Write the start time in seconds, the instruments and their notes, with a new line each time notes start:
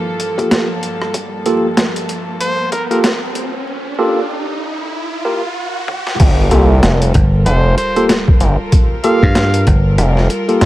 Already playing: string section G2 F3 A#3 A4, riser
0.20 closed hi-hat
0.38 tine electric piano A#3 F4 G4 A4, kick, closed hi-hat
0.51 snare, closed hi-hat
0.83 closed hi-hat
1.02 cross-stick
1.14 kick, closed hi-hat
1.46 tine electric piano A#3 F4 G4 A4, closed hi-hat
1.77 snare, closed hi-hat
1.96 closed hi-hat
2.09 closed hi-hat
2.41 trumpet C5, closed hi-hat
2.72 trumpet A#4, kick, closed hi-hat
2.91 tine electric piano A#3 F4 G4 A4, trumpet A#4, closed hi-hat
3.04 snare, closed hi-hat
3.35 closed hi-hat
3.99 tine electric piano A#3 F4 G4 A4
5.25 tine electric piano A#3 F4 G4 A#4
5.88 high tom
6.07 snare
6.19 analog synth bass G1, string section G3 F4 A4 A#4, kick, closed hi-hat, crash, sub drop
6.51 analog synth bass C2, tine electric piano A#3 F4 G4 A4, closed hi-hat
6.83 analog synth bass F1, snare, closed hi-hat
7.02 closed hi-hat
7.14 slap bass G1, kick, closed hi-hat
7.46 analog synth bass F1, trumpet C5, closed hi-hat
7.78 trumpet C5, closed hi-hat
7.96 tine electric piano A#3 F4 G4 A4, closed hi-hat
8.09 snare, closed hi-hat
8.28 kick
8.41 analog synth bass G1, closed hi-hat
8.72 kick, closed hi-hat
9.04 tine electric piano A#3 F4 G4 A4, trumpet F5, closed hi-hat
9.23 slap bass G2, kick
9.35 snare, closed hi-hat
9.54 closed hi-hat
9.67 slap bass G1, kick, closed hi-hat
9.98 analog synth bass F1, cross-stick, closed hi-hat
10.17 snare
10.30 closed hi-hat
10.49 tine electric piano A#3 F4 G4 A4, closed hi-hat
10.61 analog synth bass G2, snare, closed hi-hat